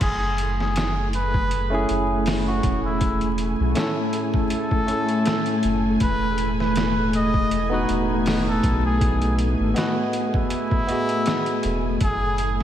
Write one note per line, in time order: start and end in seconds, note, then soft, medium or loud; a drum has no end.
0.00 1.85 F#1 loud
0.00 11.98 A3 medium
0.00 0.54 G#4 loud
0.00 11.98 G#5 medium
0.00 kick loud
0.00 closed hi-hat medium
0.00 crash medium
0.38 closed hi-hat medium
0.60 1.09 G#4 medium
0.60 snare soft
0.76 snare loud
0.76 closed hi-hat medium
1.13 1.83 B4 loud
1.13 closed hi-hat medium
1.34 kick medium
1.51 closed hi-hat medium
1.70 3.71 A3 medium
1.70 3.72 C#4 medium
1.70 3.73 E4 medium
1.74 3.73 G#4 loud
1.89 2.61 F#1 medium
1.89 closed hi-hat medium
2.26 snare loud
2.26 open hi-hat medium
2.47 2.80 F#4 medium
2.63 3.55 E1 medium
2.63 kick loud
2.63 closed hi-hat medium
2.86 3.34 E4 medium
3.01 kick loud
3.01 closed hi-hat medium
3.21 closed hi-hat soft
3.38 closed hi-hat medium
3.60 3.74 B1 medium
3.74 4.84 A3 medium
3.74 4.84 C#4 medium
3.74 4.85 E4 medium
3.74 snare loud
3.74 closed hi-hat medium
3.79 4.86 A4 medium
4.13 closed hi-hat medium
4.34 5.88 A4 loud
4.34 kick medium
4.50 closed hi-hat medium
4.71 kick medium
4.86 5.98 A3 medium
4.86 5.99 C#4 medium
4.86 6.00 E4 medium
4.86 closed hi-hat medium
4.91 6.00 A4 medium
5.09 closed hi-hat soft
5.26 snare loud
5.26 closed hi-hat medium
5.46 closed hi-hat soft
5.63 5.97 F#1 loud
5.63 closed hi-hat medium
6.00 7.85 E1 medium
6.00 6.54 B4 loud
6.00 kick loud
6.00 closed hi-hat medium
6.38 closed hi-hat medium
6.60 7.09 B4 medium
6.60 snare soft
6.76 snare loud
6.76 closed hi-hat medium
7.13 7.83 D#5 loud
7.13 closed hi-hat medium
7.34 kick loud
7.51 closed hi-hat medium
7.70 9.71 B3 loud
7.70 9.72 D#4 medium
7.70 9.73 F#4 medium
7.74 9.73 B4 loud
7.89 8.61 E1 medium
7.89 closed hi-hat medium
8.26 snare loud
8.26 open hi-hat medium
8.49 8.81 A4 medium
8.63 9.55 B1 medium
8.63 kick medium
8.63 closed hi-hat medium
8.86 9.34 G#4 loud
9.01 kick loud
9.01 closed hi-hat medium
9.22 closed hi-hat soft
9.39 closed hi-hat medium
9.60 9.74 G#1 medium
9.74 10.84 B3 medium
9.74 10.85 F#4 medium
9.74 10.84 D#5 medium
9.74 snare loud
9.74 closed hi-hat medium
9.79 10.86 B4 medium
10.13 closed hi-hat medium
10.34 11.89 E4 loud
10.34 kick loud
10.50 closed hi-hat loud
10.71 kick loud
10.87 11.98 B3 medium
10.87 12.00 F#4 medium
10.87 11.99 D#5 medium
10.87 closed hi-hat medium
10.92 12.01 G#4 medium
11.09 closed hi-hat soft
11.26 snare loud
11.26 closed hi-hat medium
11.46 closed hi-hat soft
11.63 11.97 E1 loud
11.63 closed hi-hat medium
11.99 12.63 F#1 loud
11.99 12.63 A3 medium
11.99 12.54 G#4 loud
11.99 12.63 G#5 medium
11.99 kick loud
11.99 closed hi-hat medium
12.38 closed hi-hat medium